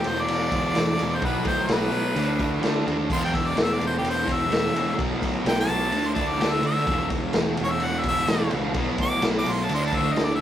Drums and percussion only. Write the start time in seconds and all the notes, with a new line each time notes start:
0.04 ride
0.28 ride
0.52 kick, ride
0.75 snare, ride
0.99 ride
1.22 kick, ride
1.45 kick, ride
1.69 snare, ride
1.92 ride
2.16 ride
2.39 kick, ride
2.63 snare, ride
2.88 ride
3.10 kick, crash
3.34 kick, ride
3.57 snare, ride
3.81 ride
4.04 ride
4.28 kick, ride
4.52 snare, ride
4.76 ride
4.99 kick, ride
5.22 kick, ride
5.46 snare, ride
5.69 ride
5.92 ride
6.16 kick, ride
6.41 snare, ride
6.63 ride
6.77 snare
6.87 kick, ride
7.10 kick, ride
7.33 snare, ride
7.57 ride
7.80 ride
8.03 kick, ride
8.27 snare, ride
8.51 ride
8.74 kick, ride
8.98 kick, ride
9.22 snare, ride
9.46 ride
9.69 ride
9.93 kick, ride
10.16 snare, ride